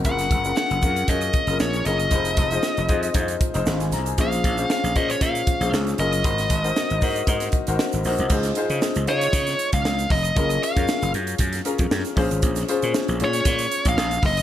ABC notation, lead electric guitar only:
X:1
M:4/4
L:1/16
Q:"Swing 16ths" 1/4=116
K:Bbm
V:1 name="Lead electric guitar"
g4 g4 e4 d2 e2- | e8- e2 z6 | f4 f2 e d f4 z2 e2- | e12 z4 |
z6 d4- d f3 e2 | e2 f4 z8 z2 | z6 d4- d f3 e2 |]